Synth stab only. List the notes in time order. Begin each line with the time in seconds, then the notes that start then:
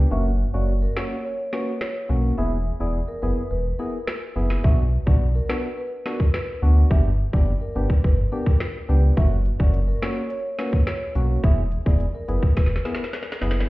0.11 A#3 C#4 F#4
0.54 A#3 C#4 F#4
0.96 A#3 C#4 F#4
1.53 A#3 C#4 F#4
2.09 A#3 C#4 F#4
2.38 B3 E4 G#4
2.80 B3 E4 G#4
3.22 B3 E4 G#4
3.79 B3 E4 G#4
4.36 B3 E4 G#4
4.64 B3 D4 F#4
5.06 B3 D4 F#4
5.49 B3 D4 F#4
6.06 B3 D4 F#4
6.62 B3 D4 F#4
6.91 B3 D4 G4
7.33 B3 D4 G4
7.75 B3 D4 G4
8.32 B3 D4 G4
8.89 B3 D4 G4
9.17 A#3 C#4 F#4
9.59 A#3 C#4 F#4
10.02 A#3 C#4 F#4
10.58 A#3 C#4 F#4
11.15 A#3 C#4 F#4
11.43 B3 E4 G#4
11.86 B3 E4 G#4
12.28 B3 E4 G#4
12.85 B3 E4 G#4
13.41 B3 E4 G#4